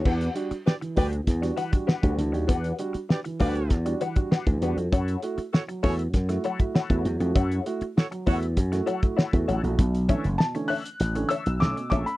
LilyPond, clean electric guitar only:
\new Staff \with { instrumentName = "Clean electric guitar" } { \time 4/4 \key e \dorian \tempo 4 = 99 <d' g' b' fis''>8 r4 <d' g' b' g''>8 r8 <d' g' b' fis''>8 <d' g' b' fis''>8 r8 | <d' g' b' fis''>8 r4 <d' g' b' fis''>8 r8 <d' g' b' fis''>8 <d' g' b' fis''>8 <d' g' b' fis''>16 r16 | <e' a' cis'' fis''>8 r4 <e' a' cis'' gis''>8 r8 <e' a' cis'' fis''>8 <e' a' cis'' fis''>8 r8 | <e' a' cis'' fis''>8 r4 <e' a' cis'' fis''>8 r8 <e' a' cis'' fis''>8 <e' a' cis'' fis''>8 <e' a' cis'' fis''>16 r16 |
r8 <d' a' cis'' e''>8 r8 <d' a' cis'' e''>8 r8 <d' a' cis'' e''>8 r8 <d' a' cis'' e''>8 | }